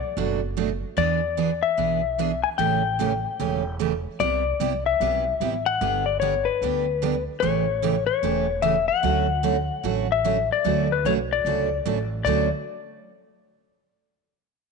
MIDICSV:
0, 0, Header, 1, 4, 480
1, 0, Start_track
1, 0, Key_signature, 2, "major"
1, 0, Tempo, 402955
1, 1159, Time_signature, 4, 2, 24, 8
1, 17532, End_track
2, 0, Start_track
2, 0, Title_t, "Electric slide guitar"
2, 0, Program_c, 0, 29
2, 0, Note_on_c, 0, 74, 70
2, 478, Note_off_c, 0, 74, 0
2, 1166, Note_on_c, 0, 74, 88
2, 1936, Note_on_c, 0, 76, 91
2, 1981, Note_off_c, 0, 74, 0
2, 2858, Note_off_c, 0, 76, 0
2, 2901, Note_on_c, 0, 80, 100
2, 2960, Note_off_c, 0, 80, 0
2, 3073, Note_on_c, 0, 79, 96
2, 4470, Note_off_c, 0, 79, 0
2, 5003, Note_on_c, 0, 74, 102
2, 5787, Note_off_c, 0, 74, 0
2, 5792, Note_on_c, 0, 76, 89
2, 6746, Note_on_c, 0, 78, 113
2, 6783, Note_off_c, 0, 76, 0
2, 7197, Note_off_c, 0, 78, 0
2, 7216, Note_on_c, 0, 74, 88
2, 7377, Note_off_c, 0, 74, 0
2, 7382, Note_on_c, 0, 73, 100
2, 7683, Note_on_c, 0, 71, 92
2, 7716, Note_off_c, 0, 73, 0
2, 8612, Note_off_c, 0, 71, 0
2, 8815, Note_on_c, 0, 73, 103
2, 9575, Note_off_c, 0, 73, 0
2, 9607, Note_on_c, 0, 73, 90
2, 10272, Note_on_c, 0, 76, 86
2, 10284, Note_off_c, 0, 73, 0
2, 10573, Note_off_c, 0, 76, 0
2, 10578, Note_on_c, 0, 78, 91
2, 12055, Note_on_c, 0, 76, 107
2, 12144, Note_off_c, 0, 78, 0
2, 12492, Note_off_c, 0, 76, 0
2, 12537, Note_on_c, 0, 74, 96
2, 13011, Note_on_c, 0, 71, 78
2, 13019, Note_off_c, 0, 74, 0
2, 13173, Note_off_c, 0, 71, 0
2, 13175, Note_on_c, 0, 73, 86
2, 13258, Note_off_c, 0, 73, 0
2, 13491, Note_on_c, 0, 74, 84
2, 14395, Note_off_c, 0, 74, 0
2, 14588, Note_on_c, 0, 74, 84
2, 14885, Note_off_c, 0, 74, 0
2, 17532, End_track
3, 0, Start_track
3, 0, Title_t, "Steel-string acoustic guitar"
3, 0, Program_c, 1, 25
3, 199, Note_on_c, 1, 47, 58
3, 208, Note_on_c, 1, 54, 62
3, 212, Note_on_c, 1, 62, 67
3, 214, Note_on_c, 1, 66, 64
3, 215, Note_on_c, 1, 57, 57
3, 464, Note_off_c, 1, 47, 0
3, 468, Note_off_c, 1, 54, 0
3, 470, Note_off_c, 1, 62, 0
3, 471, Note_off_c, 1, 66, 0
3, 472, Note_off_c, 1, 57, 0
3, 675, Note_on_c, 1, 47, 64
3, 682, Note_on_c, 1, 54, 65
3, 683, Note_on_c, 1, 57, 76
3, 683, Note_on_c, 1, 62, 79
3, 687, Note_on_c, 1, 66, 68
3, 818, Note_off_c, 1, 47, 0
3, 821, Note_off_c, 1, 54, 0
3, 821, Note_off_c, 1, 57, 0
3, 821, Note_off_c, 1, 62, 0
3, 823, Note_off_c, 1, 66, 0
3, 1151, Note_on_c, 1, 52, 61
3, 1161, Note_on_c, 1, 62, 61
3, 1162, Note_on_c, 1, 59, 64
3, 1168, Note_on_c, 1, 68, 64
3, 1421, Note_off_c, 1, 52, 0
3, 1425, Note_off_c, 1, 62, 0
3, 1426, Note_off_c, 1, 59, 0
3, 1429, Note_off_c, 1, 68, 0
3, 1635, Note_on_c, 1, 52, 66
3, 1640, Note_on_c, 1, 59, 67
3, 1642, Note_on_c, 1, 62, 62
3, 1650, Note_on_c, 1, 68, 69
3, 1778, Note_off_c, 1, 52, 0
3, 1780, Note_off_c, 1, 59, 0
3, 1781, Note_off_c, 1, 62, 0
3, 1785, Note_off_c, 1, 68, 0
3, 2113, Note_on_c, 1, 52, 53
3, 2119, Note_on_c, 1, 59, 50
3, 2122, Note_on_c, 1, 62, 58
3, 2128, Note_on_c, 1, 68, 52
3, 2382, Note_off_c, 1, 52, 0
3, 2385, Note_off_c, 1, 59, 0
3, 2386, Note_off_c, 1, 62, 0
3, 2389, Note_off_c, 1, 68, 0
3, 2603, Note_on_c, 1, 52, 58
3, 2610, Note_on_c, 1, 59, 68
3, 2613, Note_on_c, 1, 62, 73
3, 2617, Note_on_c, 1, 68, 67
3, 2742, Note_off_c, 1, 52, 0
3, 2746, Note_off_c, 1, 59, 0
3, 2747, Note_off_c, 1, 62, 0
3, 2749, Note_off_c, 1, 68, 0
3, 3078, Note_on_c, 1, 49, 63
3, 3083, Note_on_c, 1, 52, 62
3, 3085, Note_on_c, 1, 57, 61
3, 3089, Note_on_c, 1, 61, 55
3, 3090, Note_on_c, 1, 67, 62
3, 3345, Note_off_c, 1, 49, 0
3, 3347, Note_off_c, 1, 52, 0
3, 3348, Note_off_c, 1, 57, 0
3, 3350, Note_off_c, 1, 61, 0
3, 3350, Note_off_c, 1, 67, 0
3, 3561, Note_on_c, 1, 49, 58
3, 3570, Note_on_c, 1, 52, 62
3, 3576, Note_on_c, 1, 57, 71
3, 3582, Note_on_c, 1, 67, 67
3, 3583, Note_on_c, 1, 61, 80
3, 3701, Note_off_c, 1, 49, 0
3, 3706, Note_off_c, 1, 52, 0
3, 3709, Note_off_c, 1, 57, 0
3, 3712, Note_off_c, 1, 61, 0
3, 3712, Note_off_c, 1, 67, 0
3, 4044, Note_on_c, 1, 49, 59
3, 4048, Note_on_c, 1, 52, 54
3, 4053, Note_on_c, 1, 57, 51
3, 4053, Note_on_c, 1, 61, 58
3, 4060, Note_on_c, 1, 67, 65
3, 4308, Note_off_c, 1, 49, 0
3, 4310, Note_off_c, 1, 52, 0
3, 4313, Note_off_c, 1, 57, 0
3, 4313, Note_off_c, 1, 61, 0
3, 4316, Note_off_c, 1, 67, 0
3, 4520, Note_on_c, 1, 49, 69
3, 4524, Note_on_c, 1, 52, 64
3, 4529, Note_on_c, 1, 57, 73
3, 4535, Note_on_c, 1, 61, 70
3, 4541, Note_on_c, 1, 67, 77
3, 4661, Note_off_c, 1, 49, 0
3, 4663, Note_off_c, 1, 52, 0
3, 4666, Note_off_c, 1, 57, 0
3, 4669, Note_off_c, 1, 61, 0
3, 4672, Note_off_c, 1, 67, 0
3, 5000, Note_on_c, 1, 48, 57
3, 5009, Note_on_c, 1, 55, 59
3, 5010, Note_on_c, 1, 59, 60
3, 5014, Note_on_c, 1, 64, 67
3, 5016, Note_on_c, 1, 67, 66
3, 5266, Note_off_c, 1, 48, 0
3, 5271, Note_off_c, 1, 55, 0
3, 5271, Note_off_c, 1, 59, 0
3, 5273, Note_off_c, 1, 64, 0
3, 5274, Note_off_c, 1, 67, 0
3, 5480, Note_on_c, 1, 48, 65
3, 5484, Note_on_c, 1, 55, 78
3, 5492, Note_on_c, 1, 59, 63
3, 5494, Note_on_c, 1, 64, 83
3, 5495, Note_on_c, 1, 67, 80
3, 5621, Note_off_c, 1, 48, 0
3, 5624, Note_off_c, 1, 55, 0
3, 5628, Note_off_c, 1, 59, 0
3, 5629, Note_off_c, 1, 64, 0
3, 5629, Note_off_c, 1, 67, 0
3, 5966, Note_on_c, 1, 48, 54
3, 5970, Note_on_c, 1, 55, 56
3, 5973, Note_on_c, 1, 59, 59
3, 5978, Note_on_c, 1, 64, 54
3, 5985, Note_on_c, 1, 67, 63
3, 6229, Note_off_c, 1, 48, 0
3, 6231, Note_off_c, 1, 55, 0
3, 6233, Note_off_c, 1, 59, 0
3, 6235, Note_off_c, 1, 64, 0
3, 6239, Note_off_c, 1, 67, 0
3, 6443, Note_on_c, 1, 48, 62
3, 6446, Note_on_c, 1, 55, 64
3, 6449, Note_on_c, 1, 59, 67
3, 6454, Note_on_c, 1, 64, 68
3, 6456, Note_on_c, 1, 67, 65
3, 6583, Note_off_c, 1, 48, 0
3, 6585, Note_off_c, 1, 55, 0
3, 6586, Note_off_c, 1, 59, 0
3, 6589, Note_off_c, 1, 64, 0
3, 6590, Note_off_c, 1, 67, 0
3, 6922, Note_on_c, 1, 50, 61
3, 6925, Note_on_c, 1, 55, 64
3, 6928, Note_on_c, 1, 59, 59
3, 6934, Note_on_c, 1, 62, 59
3, 6938, Note_on_c, 1, 67, 70
3, 7187, Note_off_c, 1, 50, 0
3, 7189, Note_off_c, 1, 55, 0
3, 7190, Note_off_c, 1, 59, 0
3, 7193, Note_off_c, 1, 62, 0
3, 7196, Note_off_c, 1, 67, 0
3, 7402, Note_on_c, 1, 50, 73
3, 7405, Note_on_c, 1, 55, 68
3, 7407, Note_on_c, 1, 59, 64
3, 7414, Note_on_c, 1, 67, 68
3, 7415, Note_on_c, 1, 62, 67
3, 7543, Note_off_c, 1, 50, 0
3, 7544, Note_off_c, 1, 55, 0
3, 7545, Note_off_c, 1, 59, 0
3, 7549, Note_off_c, 1, 62, 0
3, 7549, Note_off_c, 1, 67, 0
3, 7886, Note_on_c, 1, 50, 55
3, 7893, Note_on_c, 1, 55, 58
3, 7896, Note_on_c, 1, 59, 54
3, 7902, Note_on_c, 1, 62, 66
3, 7905, Note_on_c, 1, 67, 64
3, 8149, Note_off_c, 1, 50, 0
3, 8153, Note_off_c, 1, 55, 0
3, 8154, Note_off_c, 1, 59, 0
3, 8158, Note_off_c, 1, 62, 0
3, 8159, Note_off_c, 1, 67, 0
3, 8361, Note_on_c, 1, 50, 70
3, 8368, Note_on_c, 1, 55, 70
3, 8372, Note_on_c, 1, 59, 69
3, 8374, Note_on_c, 1, 62, 68
3, 8379, Note_on_c, 1, 67, 75
3, 8502, Note_off_c, 1, 50, 0
3, 8506, Note_off_c, 1, 55, 0
3, 8508, Note_off_c, 1, 59, 0
3, 8509, Note_off_c, 1, 62, 0
3, 8511, Note_off_c, 1, 67, 0
3, 8842, Note_on_c, 1, 49, 60
3, 8845, Note_on_c, 1, 52, 61
3, 8849, Note_on_c, 1, 57, 63
3, 8853, Note_on_c, 1, 61, 67
3, 8858, Note_on_c, 1, 67, 61
3, 9107, Note_off_c, 1, 49, 0
3, 9109, Note_off_c, 1, 52, 0
3, 9111, Note_off_c, 1, 57, 0
3, 9113, Note_off_c, 1, 61, 0
3, 9115, Note_off_c, 1, 67, 0
3, 9319, Note_on_c, 1, 49, 65
3, 9326, Note_on_c, 1, 52, 69
3, 9326, Note_on_c, 1, 57, 73
3, 9335, Note_on_c, 1, 61, 66
3, 9337, Note_on_c, 1, 67, 85
3, 9461, Note_off_c, 1, 49, 0
3, 9465, Note_off_c, 1, 52, 0
3, 9465, Note_off_c, 1, 57, 0
3, 9469, Note_off_c, 1, 61, 0
3, 9470, Note_off_c, 1, 67, 0
3, 9801, Note_on_c, 1, 49, 54
3, 9805, Note_on_c, 1, 52, 54
3, 9813, Note_on_c, 1, 57, 60
3, 9814, Note_on_c, 1, 61, 58
3, 9818, Note_on_c, 1, 67, 63
3, 10066, Note_off_c, 1, 49, 0
3, 10068, Note_off_c, 1, 52, 0
3, 10072, Note_off_c, 1, 57, 0
3, 10073, Note_off_c, 1, 61, 0
3, 10075, Note_off_c, 1, 67, 0
3, 10273, Note_on_c, 1, 52, 62
3, 10274, Note_on_c, 1, 49, 70
3, 10279, Note_on_c, 1, 61, 65
3, 10282, Note_on_c, 1, 57, 64
3, 10283, Note_on_c, 1, 67, 67
3, 10418, Note_off_c, 1, 49, 0
3, 10418, Note_off_c, 1, 52, 0
3, 10421, Note_off_c, 1, 61, 0
3, 10422, Note_off_c, 1, 57, 0
3, 10423, Note_off_c, 1, 67, 0
3, 10755, Note_on_c, 1, 50, 57
3, 10756, Note_on_c, 1, 54, 56
3, 10765, Note_on_c, 1, 57, 61
3, 10771, Note_on_c, 1, 61, 60
3, 10772, Note_on_c, 1, 66, 59
3, 11023, Note_off_c, 1, 50, 0
3, 11023, Note_off_c, 1, 54, 0
3, 11028, Note_off_c, 1, 57, 0
3, 11031, Note_off_c, 1, 61, 0
3, 11032, Note_off_c, 1, 66, 0
3, 11234, Note_on_c, 1, 50, 64
3, 11239, Note_on_c, 1, 57, 74
3, 11240, Note_on_c, 1, 54, 66
3, 11246, Note_on_c, 1, 61, 76
3, 11248, Note_on_c, 1, 66, 77
3, 11378, Note_off_c, 1, 50, 0
3, 11380, Note_off_c, 1, 57, 0
3, 11381, Note_off_c, 1, 54, 0
3, 11384, Note_off_c, 1, 61, 0
3, 11385, Note_off_c, 1, 66, 0
3, 11715, Note_on_c, 1, 50, 56
3, 11721, Note_on_c, 1, 54, 51
3, 11727, Note_on_c, 1, 57, 55
3, 11729, Note_on_c, 1, 61, 66
3, 11732, Note_on_c, 1, 66, 66
3, 11983, Note_off_c, 1, 50, 0
3, 11986, Note_off_c, 1, 54, 0
3, 11989, Note_off_c, 1, 57, 0
3, 11990, Note_off_c, 1, 61, 0
3, 11991, Note_off_c, 1, 66, 0
3, 12204, Note_on_c, 1, 50, 61
3, 12207, Note_on_c, 1, 54, 59
3, 12211, Note_on_c, 1, 57, 68
3, 12215, Note_on_c, 1, 66, 62
3, 12216, Note_on_c, 1, 61, 71
3, 12342, Note_off_c, 1, 50, 0
3, 12344, Note_off_c, 1, 54, 0
3, 12346, Note_off_c, 1, 57, 0
3, 12348, Note_off_c, 1, 66, 0
3, 12349, Note_off_c, 1, 61, 0
3, 12680, Note_on_c, 1, 50, 51
3, 12685, Note_on_c, 1, 54, 59
3, 12694, Note_on_c, 1, 57, 58
3, 12699, Note_on_c, 1, 61, 58
3, 12701, Note_on_c, 1, 66, 61
3, 12945, Note_off_c, 1, 50, 0
3, 12947, Note_off_c, 1, 54, 0
3, 12952, Note_off_c, 1, 57, 0
3, 12955, Note_off_c, 1, 61, 0
3, 12955, Note_off_c, 1, 66, 0
3, 13167, Note_on_c, 1, 54, 71
3, 13171, Note_on_c, 1, 50, 66
3, 13179, Note_on_c, 1, 57, 72
3, 13180, Note_on_c, 1, 61, 77
3, 13183, Note_on_c, 1, 66, 65
3, 13304, Note_off_c, 1, 54, 0
3, 13306, Note_off_c, 1, 50, 0
3, 13310, Note_off_c, 1, 57, 0
3, 13310, Note_off_c, 1, 61, 0
3, 13312, Note_off_c, 1, 66, 0
3, 13651, Note_on_c, 1, 50, 58
3, 13658, Note_on_c, 1, 54, 54
3, 13661, Note_on_c, 1, 57, 68
3, 13666, Note_on_c, 1, 61, 63
3, 13669, Note_on_c, 1, 66, 54
3, 13910, Note_off_c, 1, 50, 0
3, 13914, Note_off_c, 1, 54, 0
3, 13915, Note_off_c, 1, 57, 0
3, 13918, Note_off_c, 1, 61, 0
3, 13919, Note_off_c, 1, 66, 0
3, 14122, Note_on_c, 1, 50, 62
3, 14124, Note_on_c, 1, 54, 73
3, 14132, Note_on_c, 1, 57, 62
3, 14134, Note_on_c, 1, 61, 73
3, 14138, Note_on_c, 1, 66, 69
3, 14261, Note_off_c, 1, 50, 0
3, 14262, Note_off_c, 1, 54, 0
3, 14266, Note_off_c, 1, 57, 0
3, 14267, Note_off_c, 1, 61, 0
3, 14269, Note_off_c, 1, 66, 0
3, 14600, Note_on_c, 1, 50, 68
3, 14606, Note_on_c, 1, 54, 69
3, 14616, Note_on_c, 1, 57, 81
3, 14620, Note_on_c, 1, 61, 74
3, 14625, Note_on_c, 1, 66, 76
3, 14851, Note_off_c, 1, 50, 0
3, 14854, Note_off_c, 1, 54, 0
3, 14859, Note_off_c, 1, 57, 0
3, 14861, Note_off_c, 1, 61, 0
3, 14864, Note_off_c, 1, 66, 0
3, 17532, End_track
4, 0, Start_track
4, 0, Title_t, "Upright bass"
4, 0, Program_c, 2, 32
4, 199, Note_on_c, 2, 30, 93
4, 968, Note_off_c, 2, 30, 0
4, 1157, Note_on_c, 2, 40, 81
4, 1927, Note_off_c, 2, 40, 0
4, 2119, Note_on_c, 2, 35, 84
4, 2888, Note_off_c, 2, 35, 0
4, 3084, Note_on_c, 2, 33, 93
4, 3851, Note_off_c, 2, 33, 0
4, 4045, Note_on_c, 2, 28, 89
4, 4812, Note_off_c, 2, 28, 0
4, 5000, Note_on_c, 2, 36, 83
4, 5385, Note_off_c, 2, 36, 0
4, 5476, Note_on_c, 2, 36, 78
4, 5887, Note_off_c, 2, 36, 0
4, 5959, Note_on_c, 2, 35, 86
4, 6369, Note_off_c, 2, 35, 0
4, 6436, Note_on_c, 2, 33, 73
4, 6847, Note_off_c, 2, 33, 0
4, 6921, Note_on_c, 2, 31, 96
4, 7690, Note_off_c, 2, 31, 0
4, 7878, Note_on_c, 2, 38, 76
4, 8648, Note_off_c, 2, 38, 0
4, 8843, Note_on_c, 2, 33, 99
4, 9610, Note_off_c, 2, 33, 0
4, 9800, Note_on_c, 2, 28, 76
4, 10569, Note_off_c, 2, 28, 0
4, 10762, Note_on_c, 2, 38, 95
4, 11529, Note_off_c, 2, 38, 0
4, 11718, Note_on_c, 2, 33, 80
4, 12487, Note_off_c, 2, 33, 0
4, 12683, Note_on_c, 2, 38, 92
4, 13147, Note_off_c, 2, 38, 0
4, 13160, Note_on_c, 2, 35, 86
4, 13625, Note_off_c, 2, 35, 0
4, 13636, Note_on_c, 2, 37, 83
4, 14103, Note_off_c, 2, 37, 0
4, 14121, Note_on_c, 2, 33, 89
4, 14586, Note_off_c, 2, 33, 0
4, 14594, Note_on_c, 2, 38, 92
4, 14889, Note_off_c, 2, 38, 0
4, 17532, End_track
0, 0, End_of_file